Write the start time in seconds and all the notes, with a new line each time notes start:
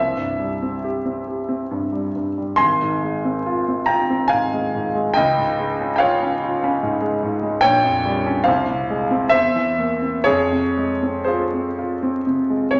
Already playing: C2 C5 E5
0.16 G2
0.39 G3
0.62 C4
0.84 G4
1.05 C4
1.27 G4
1.49 C4
1.71 G2
1.93 G3
2.15 G2
2.38 G3
2.56 G#1 G#5 C6
2.81 G#2
3.03 G#3
3.25 C4
3.46 F4
3.68 C4
3.86 F4 G5 A#5
4.10 C4
4.28 G#2 F5 G#5
4.54 G#3
4.75 G#2
4.95 G#3
5.14 C#2 D#5 G5
5.38 G#2
5.60 G#3
5.81 C#4
5.96 C#5 F5 G5
6.02 F4
6.22 C#4
6.43 F4
6.64 C#4
6.83 G#2
7.01 G#3
7.23 G#2
7.43 G#3
7.61 A#1 C#5 G5
7.84 F2
8.05 G3
8.26 C#4
8.44 C2 C5 F5
8.68 C3
8.90 G#3
9.11 C4
9.29 E2 C5 E5
9.56 E3
9.78 A#3
10.02 C4
10.24 F2 G#4 C#5
10.52 C3
10.77 G#3
11.02 C4
11.24 F4 G#4 C5
11.53 C4
11.78 F4
12.03 C4
12.27 C3
12.50 G#3
12.71 C3 C#5